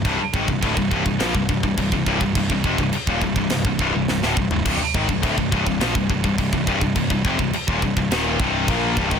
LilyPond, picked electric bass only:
\new Staff \with { instrumentName = "Picked electric bass" } { \clef bass \time 4/4 \key c \minor \tempo 4 = 104 c,,16 r16 aes,,16 c,,16 d,,16 c,,16 c,,16 c,,16 bes,,16 c,,16 c,,16 c,,16 c,,16 c,,16 c,,16 c,,16 | c,,16 c,,16 f,,16 c,,16 r16 ees,,16 c,,16 c,,16 c,,16 c,,16 c,,16 c,,16 c,,16 d,,16 c,,16 c,,16 | c,,16 r16 aes,,16 c,,16 d,,16 c,,16 c,,16 c,,16 bes,,16 c,,16 c,,16 c,,16 c,,16 c,,16 c,,16 c,,16 | c,,16 c,,16 f,,16 c,,16 r16 ees,,16 c,,16 c,,16 ees,,8 c,,8 bes,,8 c,,16 aes,,16 | }